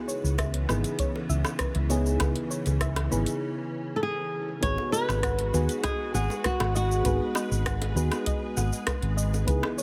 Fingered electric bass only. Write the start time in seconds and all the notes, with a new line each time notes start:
0.24 C#2
0.69 G#1
1.29 C#2
1.75 C#2
2.21 C#2
2.66 C#2
3.12 G#1
4.63 G#1
5.09 G#1
5.54 D#2
6.14 G#1
6.60 G#1
7.05 G#1
7.51 G#1
7.96 D#2
8.57 G#1
9.02 G#1
9.48 C#2